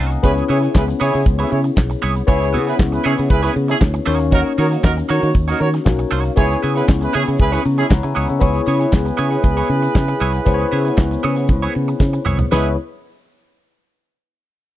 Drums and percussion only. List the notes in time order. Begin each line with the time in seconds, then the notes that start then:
0.10 closed hi-hat, shaker
0.23 kick, closed hi-hat, shaker
0.37 closed hi-hat, shaker
0.50 open hi-hat
0.63 closed hi-hat, shaker
0.75 kick, snare, clap, shaker
0.89 closed hi-hat, shaker
0.99 open hi-hat, shaker
1.14 closed hi-hat, shaker
1.26 kick, closed hi-hat, shaker
1.39 closed hi-hat, shaker
1.52 open hi-hat
1.65 closed hi-hat, shaker
1.77 kick, snare, clap, shaker
1.90 closed hi-hat, shaker
2.02 open hi-hat, shaker
2.16 closed hi-hat, shaker
2.28 kick, closed hi-hat, shaker
2.42 closed hi-hat, shaker
2.54 open hi-hat
2.68 closed hi-hat, shaker
2.79 kick, snare, clap, shaker
2.93 closed hi-hat, shaker
3.03 open hi-hat, shaker
3.17 closed hi-hat, shaker
3.29 kick, closed hi-hat, shaker
3.43 closed hi-hat, shaker
3.56 open hi-hat
3.69 snare, closed hi-hat, shaker
3.81 kick, snare, clap, shaker
3.94 closed hi-hat, shaker
4.05 open hi-hat, shaker
4.20 closed hi-hat, shaker
4.32 kick, closed hi-hat, shaker
4.46 closed hi-hat, shaker
4.58 open hi-hat
4.72 closed hi-hat, shaker
4.84 kick, snare, clap, shaker
4.97 closed hi-hat, shaker
5.08 open hi-hat, shaker
5.23 closed hi-hat, shaker
5.34 kick, closed hi-hat, shaker
5.48 closed hi-hat, shaker
5.60 open hi-hat
5.74 snare, closed hi-hat, shaker
5.86 kick, snare, clap, shaker
5.99 closed hi-hat, shaker
6.10 open hi-hat, shaker
6.24 closed hi-hat, shaker
6.37 kick, closed hi-hat, shaker
6.51 closed hi-hat, shaker
6.62 open hi-hat, shaker
6.76 closed hi-hat, shaker
6.87 kick, snare, clap, shaker
7.02 closed hi-hat, shaker
7.12 open hi-hat, shaker
7.26 closed hi-hat, shaker
7.38 kick, closed hi-hat, shaker
7.52 closed hi-hat, shaker
7.64 open hi-hat, shaker
7.79 snare, closed hi-hat, shaker
7.90 kick, snare, clap, shaker
8.03 closed hi-hat, shaker
8.15 open hi-hat, shaker
8.28 closed hi-hat, shaker
8.41 kick, closed hi-hat, shaker
8.55 closed hi-hat, shaker
8.66 open hi-hat, shaker
8.81 closed hi-hat, shaker
8.92 kick, snare, clap, shaker
9.06 closed hi-hat, shaker
9.19 open hi-hat
9.31 closed hi-hat, shaker
9.43 kick, closed hi-hat, shaker
9.57 closed hi-hat, shaker
9.70 open hi-hat
9.83 closed hi-hat, shaker
9.95 kick, snare, clap, shaker
10.08 closed hi-hat, shaker
10.22 open hi-hat
10.34 closed hi-hat, shaker
10.46 kick, closed hi-hat, shaker
10.60 closed hi-hat, shaker
10.72 open hi-hat, shaker
10.86 closed hi-hat, shaker
10.98 kick, snare, clap, shaker
11.11 closed hi-hat, shaker
11.24 open hi-hat
11.37 closed hi-hat, shaker
11.48 kick, closed hi-hat, shaker
11.62 closed hi-hat, shaker
11.75 open hi-hat
11.88 closed hi-hat, shaker
12.00 kick, snare, shaker
12.14 shaker
12.26 mid tom
12.39 floor tom, shaker
12.51 snare, crash, shaker